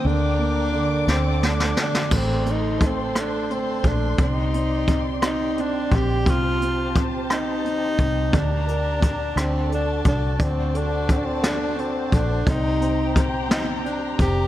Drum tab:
CC |------------|x-----------|------------|------------|
HH |------------|--x-x-x-x-x-|x-x-x-x-x-x-|x-x-x-x-x-x-|
SD |------o-oooo|------r-----|------r-----|------r-----|
BD |------------|o---o-----o-|o---o-----o-|o---o-----o-|

CC |------------|------------|------------|
HH |x-x-x-x-x-x-|x-x-x-x-x-x-|x-x-x-x-x-x-|
SD |------r-----|------o-----|------o-----|
BD |o---o-----o-|o---o-----o-|o---o-----o-|